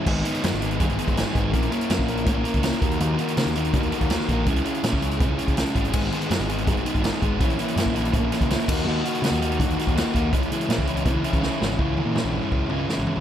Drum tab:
CC |x---------------|----------------|----------------|----------------|
HH |--xxxxxxxxxxx-x-|xxxxx-xxx-xxxxxx|x-xxxxxxxxxxx-x-|xxxxx-xxx-xxxxxx|
SD |----o-------o---|----o-------o---|----o-------oo--|----o-------o---|
T2 |----------------|----------------|----------------|----------------|
FT |----------------|----------------|----------------|----------------|
BD |o-------o--o--o-|o----o--o--o--o-|--------o--o--o-|o----o--o--o--o-|

CC |x---------------|--------------x-|----------------|----------------|
HH |--xxxxxxxxxxx-x-|xxxxx-xxx-xxxx--|--xxxxxxxxxxx-x-|xxxxx-xxx-xx----|
SD |----o-------o---|----o-----o-o---|----o-----o-o---|----o-------o-o-|
T2 |----------------|----------------|----------------|----------------|
FT |----------------|----------------|----------------|----------------|
BD |o-------o--o--o-|o----o--o--o--o-|--------o--o--o-|o----o--o--o----|

CC |----------------|
HH |----------------|
SD |----o-------o---|
T2 |--o-o---------oo|
FT |o---o--o--o---o-|
BD |o-------o-------|